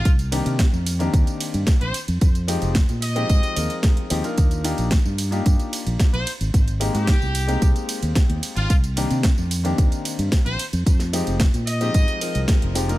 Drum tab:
RD |--x---x---x---x-|--x---x---x---x-|--x---x---x---x-|--x---x---x---x-|
HH |xxoxx-oxxxoxxxox|xxoxxxoxxxoxxxox|xxoxx-oxxxoxxxox|xxoxx-oxxxoxxxox|
TB |xxxxxxxxxxxxx-xx|xxxxxxxxxxxxx-xx|xxxxxxxxxxxxx-xx|xxxxxxxxxxxxx-xx|
SD |----o-------o---|----o-------o---|----o-------o---|----o-------o---|
BD |o---o---o---o---|o---o---o---o---|o---o---o---o---|o---o---o---o---|

RD |--x---x---x---x-|--x---x---x---x-|
HH |xxoxx-oxxxoxxxox|xxoxxxoxxxoxxxox|
TB |xxxxxxxxxxxxx-xx|xxxxxxxxxxxxx-xx|
SD |----o-------o---|-o--o-------o---|
BD |o---o---o---o---|o---o---o---o---|